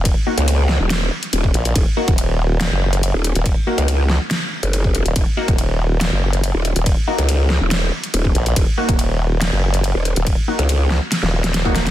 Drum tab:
RD |x---x---x---x---|x---x---x---x---|x---x---x---x---|x---x---x---x---|
HH |x--xx---x--xx-xx|x--xx---x--xx-xx|x--xx---x--xx-xx|x--xx---x--xx-xx|
SD |------o-o-------|--------o-------|------o-o-------|--------o-------|
BD |o------------o--|o--o------------|o------------o--|o--o------------|

RD |x---x---x---x---|x---x---x---x---|x---x---x---x---|
HH |x--xx---x--xx-xx|x--xx---x--xx-xx|x--xx---x--xx-xx|
SD |------o-o-------|--------o-------|------o-oo-oo-oo|
BD |o------------o--|o--o------------|o------------o--|